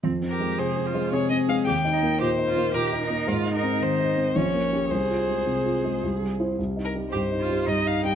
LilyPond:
<<
  \new Staff \with { instrumentName = "Violin" } { \time 3/4 \key f \minor \tempo 4 = 110 r8 bes'8 c''4 \tuplet 3/2 { des''8 ees''8 f''8 } | g''4 c''4 bes'4 | r8 bes'8 c''4 des''4 | c''2 r4 |
\key c \phrygian r8 bes'8 c''4 \tuplet 3/2 { ees''8 f''8 g''8 } | }
  \new Staff \with { instrumentName = "Cello" } { \time 3/4 \key f \minor c'8 g'8 aes'8 f'8 aes'4 | g'8 ees'8 g'8 f'8 g'8 ees'8 | f'8 ees'4. des'4 | aes'2~ aes'8 r8 |
\key c \phrygian r4 g'8 f'8 ees'4 | }
  \new Staff \with { instrumentName = "Grand piano" } { \clef bass \time 3/4 \key f \minor \tuplet 3/2 { f,8 c'8 aes8 c8 c'8 aes8 c8 c'8 aes8 } | \tuplet 3/2 { ees,8 ees'8 bes8 bes,8 ees'8 bes8 bes,8 ees'8 bes8 } | \tuplet 3/2 { aes,8 ees'8 c'8 ees8 ees'8 c'8 bes,,8 bes8 <des' g'>8 } | \tuplet 3/2 { c,8 f'8 aes8 c8 f'8 aes8 c,8 g8 <e' c''>8 } |
\key c \phrygian \tuplet 3/2 { c,8 ees'8 g8 g,8 ees'8 g8 g,8 ees'8 g8 } | }
>>